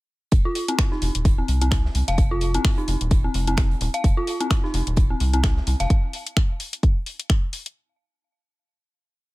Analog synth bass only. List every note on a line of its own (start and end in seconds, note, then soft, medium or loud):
0.32 0.40 F1 medium
1.02 1.10 F1 medium
1.15 1.42 D#1 medium
1.48 1.88 C2 medium
1.95 2.03 C2 medium
2.08 2.58 F1 loud
2.88 2.96 F1 medium
3.01 3.28 D#1 medium
3.34 3.74 F1 medium
3.81 3.89 D#1 loud
4.04 4.12 F1 medium
4.74 4.82 F1 medium
4.87 5.14 D#1 medium
5.20 5.61 C2 loud
5.67 5.75 C2 medium
5.80 5.86 F1 loud